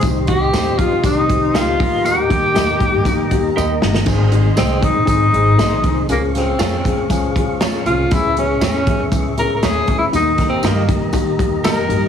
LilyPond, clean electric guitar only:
\new Staff \with { instrumentName = "Clean electric guitar" } { \time 4/4 \key aes \major \tempo 4 = 119 r4 <ees' g' c''>8 r4. <ees' g' c''>8 r8 | r4 <g' bes' ees''>8 r4. <g' bes' ees''>8 r8 | r4 <aes' c'' ees''>8 r4. <aes' c'' ees''>8 r8 | r4 <f' aes' des''>8 r4. <f' aes' des''>8 r8 |
r4 <fes' aes' des''>8 r4. <fes' aes' des''>8 r8 | r4 <g' bes' ees''>8 r4. <g' bes' ees''>8 r8 | }